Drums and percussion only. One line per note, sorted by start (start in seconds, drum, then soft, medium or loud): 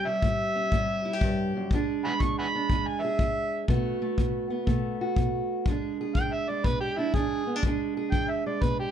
0.22 kick medium
0.72 kick medium
1.21 kick medium
1.71 kick medium
2.20 kick medium
2.70 kick medium
3.19 kick medium
3.68 kick medium
4.18 kick medium
4.67 kick medium
5.16 kick medium
5.66 kick medium
6.15 kick medium
6.64 kick medium
7.14 kick medium
7.63 kick medium
8.12 kick medium
8.62 kick medium